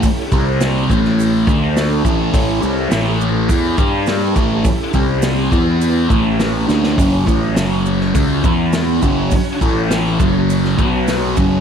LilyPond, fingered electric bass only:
\new Staff \with { instrumentName = "Fingered electric bass" } { \clef bass \time 4/4 \key a \mixolydian \tempo 4 = 103 r8 c,4 a,,4 d,4 a,,8 | a,,8 c,8 a,,4 e,8 g,4 a,,8 | r8 c,4 e,4 a,,4 d,8 | fis,,8 a,,8 fis,,4 cis,8 e,4 fis,,8 |
r8 a,,4 fis,,4 b,,4 fis,,8 | }